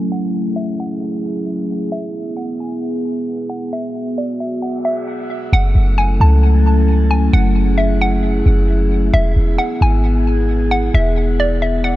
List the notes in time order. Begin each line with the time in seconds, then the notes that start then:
Already playing: F#3 A3 C#4 E4 G#5
0.11 G#4 F#5
0.56 E5
0.80 F#5
1.92 B3 E5
2.37 F#5
2.60 G#5
3.50 F#5
3.73 F#4 E5
4.18 D5
4.40 E5
4.62 F#5
4.85 E5
5.53 F#1 F#3 A3 C#4 E4 A4 F#5
5.75 F#1
5.98 G#5
6.20 C#2 A5
7.11 G#5
7.33 F#1 G#4 F#5
7.78 E5
8.01 F#5
8.46 F#1
9.14 E1 B3 G#4 E5
9.36 E1
9.58 F#5
9.81 G#1 G#5
10.71 F#5
10.94 E1 E5
11.40 D5
11.62 E5
11.84 F#5